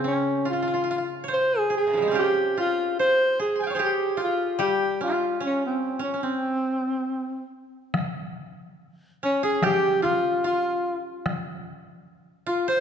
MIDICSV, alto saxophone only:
0, 0, Header, 1, 2, 480
1, 0, Start_track
1, 0, Tempo, 841515
1, 752, Time_signature, 2, 2, 24, 8
1, 1707, Tempo, 807537
1, 3627, Tempo, 863309
1, 5067, Tempo, 828729
1, 5547, Tempo, 810811
1, 7418, End_track
2, 0, Start_track
2, 0, Title_t, "Alto saxophone"
2, 0, Program_c, 0, 65
2, 42, Note_on_c, 0, 61, 60
2, 259, Note_off_c, 0, 61, 0
2, 284, Note_on_c, 0, 65, 63
2, 615, Note_off_c, 0, 65, 0
2, 762, Note_on_c, 0, 72, 68
2, 911, Note_off_c, 0, 72, 0
2, 911, Note_on_c, 0, 68, 68
2, 983, Note_off_c, 0, 68, 0
2, 1010, Note_on_c, 0, 68, 64
2, 1225, Note_off_c, 0, 68, 0
2, 1246, Note_on_c, 0, 67, 70
2, 1461, Note_off_c, 0, 67, 0
2, 1480, Note_on_c, 0, 65, 63
2, 1696, Note_off_c, 0, 65, 0
2, 1712, Note_on_c, 0, 72, 74
2, 1938, Note_off_c, 0, 72, 0
2, 1958, Note_on_c, 0, 68, 59
2, 2061, Note_off_c, 0, 68, 0
2, 2065, Note_on_c, 0, 80, 27
2, 2080, Note_off_c, 0, 80, 0
2, 2083, Note_on_c, 0, 79, 33
2, 2102, Note_off_c, 0, 79, 0
2, 2105, Note_on_c, 0, 77, 36
2, 2125, Note_off_c, 0, 77, 0
2, 2128, Note_on_c, 0, 73, 38
2, 2151, Note_off_c, 0, 73, 0
2, 2154, Note_on_c, 0, 72, 38
2, 2173, Note_off_c, 0, 72, 0
2, 2177, Note_on_c, 0, 68, 45
2, 2203, Note_off_c, 0, 68, 0
2, 2206, Note_on_c, 0, 67, 65
2, 2423, Note_off_c, 0, 67, 0
2, 2443, Note_on_c, 0, 65, 66
2, 2662, Note_off_c, 0, 65, 0
2, 2676, Note_on_c, 0, 67, 70
2, 2897, Note_off_c, 0, 67, 0
2, 2922, Note_on_c, 0, 65, 62
2, 3138, Note_off_c, 0, 65, 0
2, 3168, Note_on_c, 0, 61, 62
2, 3270, Note_off_c, 0, 61, 0
2, 3291, Note_on_c, 0, 60, 54
2, 3503, Note_off_c, 0, 60, 0
2, 3514, Note_on_c, 0, 61, 53
2, 3624, Note_off_c, 0, 61, 0
2, 3632, Note_on_c, 0, 60, 57
2, 4323, Note_off_c, 0, 60, 0
2, 5318, Note_on_c, 0, 61, 71
2, 5426, Note_off_c, 0, 61, 0
2, 5431, Note_on_c, 0, 68, 74
2, 5541, Note_off_c, 0, 68, 0
2, 5557, Note_on_c, 0, 67, 85
2, 5774, Note_off_c, 0, 67, 0
2, 5777, Note_on_c, 0, 65, 71
2, 6003, Note_off_c, 0, 65, 0
2, 6033, Note_on_c, 0, 65, 64
2, 6363, Note_off_c, 0, 65, 0
2, 7230, Note_on_c, 0, 65, 69
2, 7342, Note_off_c, 0, 65, 0
2, 7354, Note_on_c, 0, 72, 75
2, 7418, Note_off_c, 0, 72, 0
2, 7418, End_track
0, 0, End_of_file